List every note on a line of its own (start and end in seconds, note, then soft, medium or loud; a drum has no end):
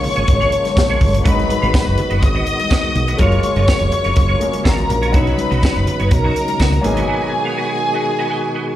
0.00 1.23 C#3 medium
0.00 0.96 F3 medium
0.00 0.96 G#3 medium
0.00 1.24 G#3 medium
0.00 0.96 A#3 medium
0.00 1.23 A#3 medium
0.00 1.00 C#4 medium
0.00 1.23 F4 medium
0.00 1.21 C#5 medium
0.00 1.21 C#6 medium
0.00 muted clean electric guitar stroke soft
0.00 open hi-hat medium
0.04 low conga medium
0.16 0.25 G#1 medium
0.16 0.26 F4 medium
0.16 0.27 G#4 medium
0.16 0.27 C#5 medium
0.16 closed hi-hat soft
0.28 0.46 G#1 loud
0.28 muted clean electric guitar stroke soft
0.28 kick loud
0.28 closed hi-hat medium
0.28 high conga medium
0.40 0.50 F4 medium
0.40 0.51 G#4 medium
0.40 0.51 C#5 medium
0.40 closed hi-hat soft
0.51 muted clean electric guitar stroke soft
0.51 closed hi-hat medium
0.64 muted clean electric guitar stroke soft
0.64 snare soft
0.64 closed hi-hat soft
0.64 high conga medium
0.76 0.95 A#1 medium
0.76 muted clean electric guitar stroke soft
0.76 kick loud
0.76 snare loud
0.76 tambourine loud
0.90 1.00 F4 medium
0.90 1.00 G#4 medium
0.90 1.00 C#5 medium
0.90 muted conga soft
0.90 high conga medium
1.01 1.19 G1 medium
1.01 muted clean electric guitar stroke soft
1.01 kick loud
1.01 open hi-hat medium
1.01 low conga medium
1.14 muted clean electric guitar stroke medium
1.14 closed hi-hat medium
1.24 1.43 G#1 loud
1.24 3.18 D#3 medium
1.24 3.15 F#3 medium
1.24 3.16 G#3 medium
1.24 3.18 G#3 medium
1.24 3.16 B3 medium
1.24 3.18 B3 medium
1.24 3.17 D#4 medium
1.24 1.47 F#4 medium
1.24 3.18 F#4 medium
1.24 1.47 B4 medium
1.24 2.20 B4 medium
1.24 1.48 D#5 medium
1.24 2.20 B5 medium
1.24 kick loud
1.24 closed hi-hat medium
1.24 muted conga soft
1.39 closed hi-hat soft
1.39 muted conga soft
1.49 muted clean electric guitar stroke soft
1.49 closed hi-hat medium
1.49 high conga medium
1.62 1.71 G#1 loud
1.62 1.72 F#4 medium
1.62 1.73 B4 medium
1.62 1.74 F5 medium
1.62 closed hi-hat soft
1.73 1.91 F#4 medium
1.73 1.86 B4 medium
1.73 1.85 D#5 loud
1.73 kick loud
1.73 snare loud
1.73 tambourine loud
1.73 high conga medium
1.86 1.95 F#1 loud
1.86 muted clean electric guitar stroke soft
1.86 muted conga soft
1.98 muted clean electric guitar stroke soft
1.98 closed hi-hat medium
1.98 low conga medium
2.10 2.23 F#1 medium
2.10 2.21 F#4 medium
2.10 2.21 B4 medium
2.10 2.21 D#5 medium
2.10 closed hi-hat soft
2.22 2.41 G#1 loud
2.22 3.18 D#5 medium
2.22 3.17 D#6 medium
2.22 muted clean electric guitar stroke soft
2.22 kick loud
2.22 closed hi-hat medium
2.22 muted conga soft
2.35 2.46 F#4 medium
2.35 2.46 B4 medium
2.35 2.47 D#5 medium
2.35 muted conga soft
2.47 muted clean electric guitar stroke soft
2.47 closed hi-hat medium
2.60 muted clean electric guitar stroke soft
2.60 closed hi-hat soft
2.60 high conga medium
2.70 2.88 F#4 medium
2.70 2.84 B4 medium
2.70 2.82 D#5 medium
2.70 kick loud
2.70 snare loud
2.70 tambourine loud
2.84 muted clean electric guitar stroke soft
2.84 high conga medium
2.95 3.13 B1 loud
2.95 muted clean electric guitar stroke soft
2.95 closed hi-hat medium
2.95 low conga medium
3.08 3.19 F#4 medium
3.08 3.20 B4 medium
3.08 3.20 D#5 medium
3.08 closed hi-hat medium
3.18 3.37 F#1 loud
3.18 6.80 C#3 medium
3.18 6.80 F#3 medium
3.18 4.38 G#3 medium
3.18 5.11 A#3 medium
3.18 4.38 A#3 medium
3.18 4.39 C#4 medium
3.18 5.12 F4 medium
3.18 3.42 F4 medium
3.18 4.39 F4 medium
3.18 3.42 A#4 loud
3.18 4.63 C#5 medium
3.18 3.42 C#5 loud
3.18 4.62 C#6 medium
3.18 kick loud
3.18 closed hi-hat medium
3.18 muted conga soft
3.32 closed hi-hat soft
3.32 muted conga soft
3.43 muted clean electric guitar stroke soft
3.43 closed hi-hat medium
3.43 high conga medium
3.56 3.65 F#1 loud
3.56 3.66 F4 medium
3.56 3.67 A#4 medium
3.56 3.68 D#5 medium
3.56 closed hi-hat soft
3.68 3.85 F4 medium
3.68 3.80 A#4 loud
3.68 3.79 C#5 medium
3.68 kick loud
3.68 snare loud
3.68 tambourine loud
3.68 muted conga soft
3.68 high conga medium
3.80 3.89 F1 loud
3.80 muted clean electric guitar stroke medium
3.80 closed hi-hat soft
3.92 muted clean electric guitar stroke soft
3.92 closed hi-hat medium
3.92 low conga medium
4.04 4.14 F1 medium
4.04 4.15 F4 soft
4.04 4.15 A#4 medium
4.04 4.15 C#5 medium
4.04 closed hi-hat soft
4.16 4.35 F#1 loud
4.16 muted clean electric guitar stroke soft
4.16 kick loud
4.16 closed hi-hat medium
4.28 4.39 F4 medium
4.28 4.40 A#4 medium
4.28 4.40 C#5 medium
4.28 muted conga soft
4.40 5.13 G#3 medium
4.40 5.14 A#3 medium
4.40 5.13 C#4 medium
4.40 5.14 G#4 medium
4.40 muted clean electric guitar stroke soft
4.40 closed hi-hat medium
4.53 muted clean electric guitar stroke soft
4.53 closed hi-hat medium
4.53 high conga medium
4.64 4.83 G#1 medium
4.64 4.85 F4 medium
4.64 4.77 A#4 medium
4.64 5.13 A#4 medium
4.64 4.76 C#5 medium
4.64 5.12 A#5 medium
4.64 kick loud
4.64 snare loud
4.64 tambourine medium
4.78 muted clean electric guitar stroke medium
4.78 closed hi-hat soft
4.78 high conga medium
4.89 5.14 A#1 loud
4.89 muted clean electric guitar stroke soft
4.89 closed hi-hat medium
4.89 low conga medium
5.02 5.13 F4 medium
5.02 5.13 A#4 medium
5.02 5.13 C#5 medium
5.02 closed hi-hat soft
5.12 5.32 B1 loud
5.12 8.76 B2 medium
5.12 6.80 F#3 medium
5.12 6.80 B3 medium
5.12 6.81 C#4 medium
5.12 6.82 D#4 medium
5.12 5.36 D#4 medium
5.12 6.81 D#4 medium
5.12 5.36 F#4 loud
5.12 6.09 B4 medium
5.12 5.36 C#5 loud
5.12 6.09 B5 medium
5.12 kick loud
5.12 closed hi-hat medium
5.12 muted conga soft
5.27 closed hi-hat soft
5.38 muted clean electric guitar stroke soft
5.38 closed hi-hat medium
5.38 high conga medium
5.51 5.60 B1 loud
5.51 5.62 D#4 medium
5.51 5.62 F#4 medium
5.51 5.63 D#5 medium
5.51 closed hi-hat soft
5.62 5.80 D#4 medium
5.62 5.76 F#4 medium
5.62 5.75 C#5 medium
5.62 kick loud
5.62 snare loud
5.62 tambourine loud
5.62 high conga medium
5.76 5.84 F#1 medium
5.76 muted clean electric guitar stroke soft
5.76 closed hi-hat soft
5.87 muted clean electric guitar stroke soft
5.87 closed hi-hat medium
5.87 low conga medium
6.00 6.09 F#1 medium
6.00 6.10 D#4 medium
6.00 6.10 F#4 medium
6.00 6.11 C#5 medium
6.00 closed hi-hat soft
6.11 6.29 B1 medium
6.11 6.83 A#4 medium
6.11 6.83 A#5 medium
6.11 muted clean electric guitar stroke soft
6.11 kick loud
6.11 closed hi-hat medium
6.11 muted conga soft
6.24 6.34 D#4 medium
6.24 6.35 F#4 medium
6.24 6.35 C#5 medium
6.36 muted clean electric guitar stroke soft
6.36 closed hi-hat medium
6.48 muted clean electric guitar stroke medium
6.48 closed hi-hat soft
6.48 high conga medium
6.59 6.78 C#2 loud
6.59 6.77 D#4 medium
6.59 6.72 F#4 medium
6.59 6.71 C#5 medium
6.59 kick loud
6.59 snare loud
6.59 tambourine loud
6.72 muted clean electric guitar stroke medium
6.72 closed hi-hat soft
6.72 muted conga soft
6.72 high conga medium
6.81 7.02 G#1 medium
6.81 8.76 D#3 medium
6.81 8.73 F#3 medium
6.81 8.76 G#3 medium
6.81 8.74 A#3 medium
6.81 8.74 B3 medium
6.81 8.75 D#4 medium
6.81 8.76 F#4 medium
6.81 8.76 G#4 medium
6.81 8.76 G#5 medium
6.81 muted clean electric guitar stroke soft
6.81 closed hi-hat medium
6.81 low conga medium
6.97 7.07 F#4 medium
6.97 7.08 B4 medium
6.97 7.08 D#5 medium
6.97 closed hi-hat soft
7.08 7.31 F#4 medium
7.08 7.31 B4 medium
7.08 7.31 D#5 loud
7.32 muted clean electric guitar stroke soft
7.45 7.55 F#4 medium
7.45 7.56 B4 medium
7.45 7.57 F5 medium
7.56 7.74 F#4 medium
7.56 7.70 B4 medium
7.56 7.69 D#5 loud
7.70 muted clean electric guitar stroke soft
7.81 muted clean electric guitar stroke soft
7.94 8.05 F#4 soft
7.94 8.05 B4 medium
7.94 8.05 D#5 medium
8.06 muted clean electric guitar stroke soft
8.19 8.28 F#4 medium
8.19 8.29 B4 medium
8.19 8.30 D#5 medium
8.30 8.47 F#4 loud
8.30 8.43 B4 medium
8.30 8.42 D#5 medium
8.43 muted clean electric guitar stroke soft
8.54 8.71 F#4 medium
8.54 8.66 B4 medium
8.54 8.66 D#5 medium
8.67 muted clean electric guitar stroke soft